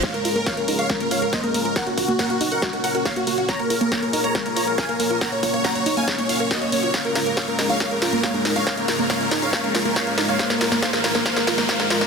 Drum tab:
HH |xxoxxxoxxxoxxxox|xxoxxxoxxxoxxxox|xxoxxxoxxxoxxxox|xxoxxxoxxxoxxxox|
SD |o---o---o---o---|o---o---o---o---|o---o---o---o---|o---o---o---o---|
CG |----------------|----------------|----------------|----------------|
BD |o---o---o---o---|o-o-o---o---o---|o---o---o---o---|o-o-o---o---o---|

HH |xxoxxxoxxxoxxxox|xxoxxxoxxxoxxxox|xxoxxxo-xxoxxxox|
SD |o-o-o-o-o-o-o-o-|o-o-o-o-o-o-o-o-|oooooooooooooooo|
CG |-------o-----o-o|-------o-oo---o-|-------o-----o-o|
BD |o---o---o---o---|o-o-o---o---o---|o---o---o---o---|